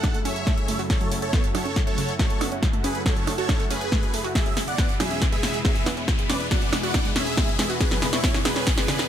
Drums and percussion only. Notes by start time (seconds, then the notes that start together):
0.04 kick, snare, closed hi-hat, percussion blips
0.14 closed hi-hat
0.25 open hi-hat
0.36 closed hi-hat
0.47 kick, snare, closed hi-hat
0.58 closed hi-hat
0.68 open hi-hat
0.79 open hi-hat
0.90 kick, snare, closed hi-hat
1.01 closed hi-hat
1.11 open hi-hat
1.22 closed hi-hat
1.33 kick, snare, closed hi-hat
1.44 closed hi-hat
1.55 open hi-hat, percussion blips
1.65 closed hi-hat
1.76 kick, snare, closed hi-hat
1.87 closed hi-hat
1.98 open hi-hat
2.09 closed hi-hat
2.19 kick, snare, closed hi-hat
2.30 closed hi-hat
2.41 open hi-hat, percussion blips
2.52 closed hi-hat
2.63 kick, snare, closed hi-hat
2.73 closed hi-hat
2.84 open hi-hat
2.95 closed hi-hat
3.06 kick, snare, closed hi-hat
3.17 closed hi-hat
3.27 open hi-hat, percussion blips
3.38 closed hi-hat
3.49 kick, snare, closed hi-hat, percussion blips
3.60 closed hi-hat
3.71 open hi-hat
3.81 closed hi-hat
3.92 kick, snare, closed hi-hat
4.03 closed hi-hat
4.14 open hi-hat
4.24 open hi-hat
4.35 kick, snare, closed hi-hat
4.46 closed hi-hat
4.57 snare, open hi-hat
4.68 closed hi-hat
4.78 kick, snare, closed hi-hat
4.89 closed hi-hat
5.00 snare, open hi-hat, percussion blips
5.11 closed hi-hat
5.22 kick, snare, closed hi-hat
5.32 closed hi-hat
5.43 snare, open hi-hat
5.54 closed hi-hat
5.65 kick, snare, closed hi-hat
5.76 closed hi-hat
5.86 snare, open hi-hat, percussion blips
5.97 closed hi-hat
6.08 kick, snare, closed hi-hat
6.19 closed hi-hat
6.30 snare, open hi-hat
6.40 closed hi-hat
6.51 kick, snare, closed hi-hat
6.62 closed hi-hat
6.73 snare, open hi-hat, percussion blips
6.83 closed hi-hat
6.94 kick, snare, closed hi-hat, percussion blips
7.05 closed hi-hat
7.16 snare, open hi-hat
7.27 closed hi-hat
7.37 kick, snare, closed hi-hat
7.48 closed hi-hat
7.59 snare, open hi-hat
7.70 open hi-hat
7.80 kick, snare, closed hi-hat
7.91 snare, closed hi-hat
8.02 snare, open hi-hat
8.13 snare, closed hi-hat
8.24 kick, snare, closed hi-hat
8.34 snare, closed hi-hat
8.45 snare, open hi-hat, percussion blips
8.56 snare, closed hi-hat
8.67 kick, snare, closed hi-hat
8.78 snare, closed hi-hat
8.88 snare, open hi-hat
8.99 snare, closed hi-hat